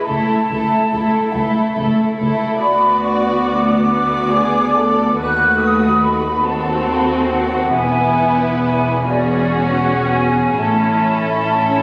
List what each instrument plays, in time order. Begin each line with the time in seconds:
0.06 cello section C#2, double bass section C#2, viola section A3, violin section E4 A4, flute section A5
0.50 cello section C#2, double bass section C#2, viola section A3, violin section E4 A4
0.92 cello section C#2, double bass section C#2, viola section A3, violin section E4 A4
1.31 double bass section C#2, cello section C#2, viola section A3, violin section E4 A4, flute section E5
1.74 cello section C#2, double bass section C#2, viola section A3, violin section A4
1.78 violin section E4
2.17 double bass section C#2, cello section C#2, viola section A3, violin section E4 A4
2.60 cello section D2, violin section D5, flute section B5
2.64 double bass section D2, viola section B3, violin section F#4
3.04 flute section C#6
3.46 flute section D6
3.89 violin section F#4 D5
4.31 violin section G#4
4.74 violin section A4
5.17 cello section D#2, double bass section D#2, viola section A3, violin section F#4 B4, flute section F#6
5.60 flute section D#6
6.01 flute section B5
6.43 viola section C4, violin section F#4 A4, flute section A5
6.94 flute section B5
7.03 flute section A5
7.12 flute section G#5
7.22 flute section A5
7.30 flute section F#5
7.72 double bass section E1, cello section E2, viola section B3, violin section E4 B4, flute section G#5
8.62 flute section G#5
9.08 viola section C#4, violin section F#4 G#4, flute section D5
9.58 flute section F#5
10.07 flute section G#5
10.56 double bass section A1, cello section A2, viola section C#4, violin section E4 A4, flute section A5
11.57 cello section C#4